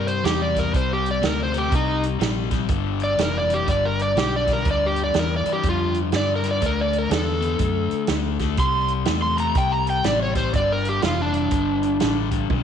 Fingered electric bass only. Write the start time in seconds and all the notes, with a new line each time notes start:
Already playing: G2
0.24 E2
0.74 C2
1.23 D2
1.72 C2
2.21 A#1
2.69 G1
3.19 F1
3.68 G1
4.16 B1
4.66 D2
5.15 E2
5.45 muted fingered electric bass stroke
5.64 F2
6.13 G2
6.62 D2
7.11 E2
7.60 F#2
7.92 muted fingered electric bass stroke
8.09 D2
8.58 C2
9.07 E2
9.55 C2
10.05 A1
10.53 G1
11.04 F1
11.52 G1
12.02 A1
12.51 B1